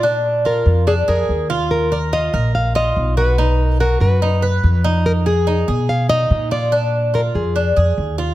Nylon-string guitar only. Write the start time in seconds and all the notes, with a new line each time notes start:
Already playing: D5
0.46 A#4
0.88 G#4
1.09 A#4
1.71 A#4
1.92 D5
2.13 D#5
2.55 F5
2.76 D#5
3.18 B4
3.64 A#4
3.81 A#4
4.01 B4
5.06 A#4
5.26 G#4
5.89 F5
6.10 D#5
6.52 D5
7.15 A#4
7.35 G#4